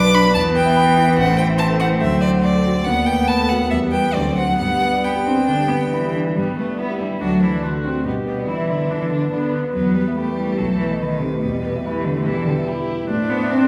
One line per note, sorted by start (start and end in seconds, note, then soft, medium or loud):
0.00 0.33 B1 medium
0.00 0.35 F#3 medium
0.00 0.25 B3 medium
0.00 0.35 D4 medium
0.00 0.04 B4 medium
0.00 0.20 B4 medium
0.00 0.38 D5 medium
0.00 0.10 B5 medium
0.00 0.16 D6 loud
0.14 0.31 D4 medium
0.14 0.34 B5 loud
0.25 0.35 B3 medium
0.34 1.16 E2 medium
0.34 2.02 E3 medium
0.34 1.20 B3 medium
0.34 0.42 A5 loud
0.45 0.62 B3 soft
0.56 0.73 B4 medium
0.56 1.17 G5 loud
0.65 0.83 E5 medium
0.76 0.93 B5 medium
0.86 1.03 B4 medium
0.97 1.14 E4 medium
1.08 1.18 B3 medium
1.18 1.99 A1 medium
1.18 2.87 C4 medium
1.18 1.37 F#5 loud
1.27 1.45 A3 soft
1.37 1.55 C5 medium
1.37 1.46 G5 medium
1.49 1.66 E5 medium
1.58 1.66 A5 loud
1.58 1.76 C6 medium
1.69 1.87 A4 medium
1.80 1.97 E4 medium
1.80 1.88 F#5 medium
1.90 2.01 A3 medium
2.00 2.83 D2 medium
2.00 2.85 F#3 medium
2.00 2.21 E5 medium
2.12 2.29 A3 medium
2.22 2.40 C5 medium
2.22 2.30 D5 medium
2.34 2.50 F#5 soft
2.43 2.86 D5 medium
2.43 2.61 C6 medium
2.55 2.72 A4 medium
2.67 2.83 F#4 medium
2.76 2.86 A3 soft
2.85 3.68 D#2 medium
2.85 3.73 A3 medium
2.85 4.16 B3 medium
2.85 3.07 F#5 medium
2.97 3.14 A3 soft
3.06 3.24 B4 medium
3.06 3.29 G5 medium
3.19 3.35 F#5 medium
3.28 3.51 A5 loud
3.28 3.46 B5 medium
3.40 3.57 A4 medium
3.49 3.67 F#4 medium
3.49 3.70 F#5 medium
3.62 3.72 A3 soft
3.71 4.14 E2 medium
3.71 4.16 G3 medium
3.71 3.79 E5 medium
3.82 3.99 G3 soft
3.92 4.10 B4 medium
3.92 4.16 G5 medium
4.04 4.15 G5 soft
4.14 4.58 D2 medium
4.14 4.59 F#3 medium
4.14 4.58 C4 medium
4.14 4.36 D5 medium
4.27 4.44 A3 soft
4.37 4.55 C5 soft
4.37 4.58 F#5 medium
4.49 4.60 F#5 soft
4.58 5.46 G2 medium
4.58 4.99 G3 medium
4.58 6.13 B3 medium
4.58 5.05 F#5 medium
4.70 4.88 G3 soft
4.81 4.99 B4 soft
4.93 5.11 D5 medium
5.04 5.12 B3 medium
5.04 6.16 G5 medium
5.04 5.22 B5 medium
5.15 5.33 G4 soft
5.26 5.47 C4 medium
5.26 5.44 D4 medium
5.37 5.55 G3 soft
5.47 5.66 D3 soft
5.47 5.70 D4 medium
5.59 5.77 G3 soft
5.69 5.90 B3 medium
5.69 5.88 B4 medium
5.82 6.00 D5 soft
5.91 6.38 E3 medium
5.91 6.11 B5 medium
6.05 6.23 G4 soft
6.16 6.33 D4 soft
6.27 6.38 G3 soft
6.36 7.19 G2 soft
6.36 6.60 G3 medium
6.36 6.57 G3 medium
6.36 6.80 B3 soft
6.48 6.65 G3 soft
6.58 6.79 A3 medium
6.58 6.80 A3 soft
6.58 6.76 B4 soft
6.70 6.87 D5 soft
6.78 7.02 B3 medium
6.78 6.99 B3 medium
6.78 7.23 E4 soft
6.78 6.96 B5 soft
6.90 7.07 G4 soft
7.00 7.08 G3 medium
7.00 7.20 G3 medium
7.00 7.17 D4 soft
7.10 7.21 G3 soft
7.20 8.02 D2 soft
7.20 7.44 F#3 medium
7.20 7.64 D4 soft
7.20 7.42 F#4 medium
7.30 7.48 A3 soft
7.41 7.64 E3 medium
7.41 7.63 E4 soft
7.41 7.58 C5 soft
7.52 7.69 D5 soft
7.62 7.86 D3 medium
7.62 7.72 D4 soft
7.62 8.04 F#4 medium
7.62 7.80 C6 soft
7.73 7.90 A4 soft
7.83 8.07 C3 soft
7.83 8.05 C4 soft
7.83 8.01 D4 soft
7.95 8.05 A3 soft
8.05 8.88 G2 soft
8.05 8.26 B2 medium
8.05 8.14 B3 soft
8.05 8.47 G4 soft
8.16 8.33 B3 soft
8.26 8.50 B2 medium
8.26 8.50 B3 soft
8.26 8.44 B4 soft
8.37 8.54 D5 soft
8.47 8.71 E3 medium
8.47 8.91 E4 medium
8.47 8.69 E4 medium
8.47 8.65 B5 soft
8.58 8.75 B4 soft
8.69 8.93 D3 medium
8.69 8.86 D4 soft
8.69 8.93 D4 soft
8.79 8.96 B3 soft
8.90 9.07 D3 soft
8.90 9.11 E3 medium
8.90 9.31 D4 soft
8.90 9.12 E4 medium
9.02 9.18 B3 soft
9.10 9.31 D3 medium
9.10 9.32 D4 medium
9.10 9.28 B4 soft
9.21 9.39 D5 soft
9.31 9.72 D3 medium
9.31 9.74 B3 soft
9.31 9.74 D4 soft
9.31 9.49 B5 soft
9.43 9.60 B4 soft
9.53 9.70 D4 soft
9.64 9.75 B3 soft
9.73 10.57 E2 soft
9.73 9.96 F#3 medium
9.73 10.18 B3 soft
9.73 10.14 B4 soft
9.86 10.02 B3 soft
9.94 10.15 G3 medium
9.94 10.13 B4 soft
10.08 10.24 E5 soft
10.16 10.34 A3 medium
10.16 11.43 A3 medium
10.16 10.60 G4 soft
10.16 10.34 B5 soft
10.27 10.44 B4 soft
10.35 10.59 G3 medium
10.35 10.55 E4 soft
10.49 10.59 B3 soft
10.58 11.40 B1 soft
10.58 10.77 F#3 medium
10.58 11.04 A4 soft
10.69 10.86 A3 soft
10.78 10.99 E3 medium
10.78 10.97 B4 soft
10.91 11.08 D#5 soft
11.00 11.23 D#3 medium
11.00 12.28 B4 soft
11.00 11.18 B5 soft
11.13 11.29 A4 soft
11.21 11.45 C3 medium
11.21 11.39 D#4 soft
11.34 11.44 A3 soft
11.43 12.24 E2 soft
11.43 11.63 B2 medium
11.43 11.86 G3 soft
11.55 11.71 G3 soft
11.64 11.84 B2 medium
11.64 11.81 B4 soft
11.76 11.92 E5 soft
11.84 12.06 E3 medium
11.84 12.28 A3 medium
11.84 12.02 B5 soft
11.96 12.12 G4 soft
12.05 12.27 D3 medium
12.05 12.22 E4 soft
12.16 12.32 G3 soft
12.25 12.43 B2 soft
12.25 12.46 E3 medium
12.25 12.69 G3 medium
12.25 12.69 A4 soft
12.36 12.53 G3 soft
12.47 12.55 D3 medium
12.47 12.63 B4 soft
12.58 12.74 E5 soft
12.67 13.10 E4 medium
12.67 13.09 G4 soft
12.67 12.85 B5 soft
12.80 12.96 G4 soft
12.90 13.06 E4 soft
13.01 13.11 G3 soft
13.09 13.68 A2 medium
13.09 13.31 A3 medium
13.09 13.68 D4 medium
13.09 13.68 C5 medium
13.21 13.37 A3 soft
13.30 13.52 B3 medium
13.30 13.48 C5 soft
13.43 13.59 E5 soft
13.50 13.68 C4 medium
13.50 13.68 C6 medium
13.64 13.68 A4 soft